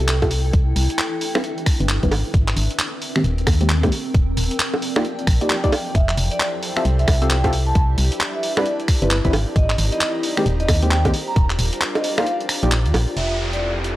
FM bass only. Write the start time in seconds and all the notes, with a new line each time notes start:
Already playing: C2
0.53 C2
0.76 C2
1.80 G1
2.03 G1
2.11 G#1
2.34 G#1
2.56 G#1
3.24 D#1
3.47 D#2
4.14 D#1
4.37 D#1
5.27 A#1
5.95 F1
6.17 F1
6.85 C2
7.08 C2
7.75 C2
7.98 C2
9.02 G1
9.25 G1
9.33 G#1
9.56 G#1
9.78 G#1
10.46 D#1
10.69 D#2
11.36 D#1
11.59 D#1
12.63 A#1
12.86 D#2
12.94 A#1
13.17 F1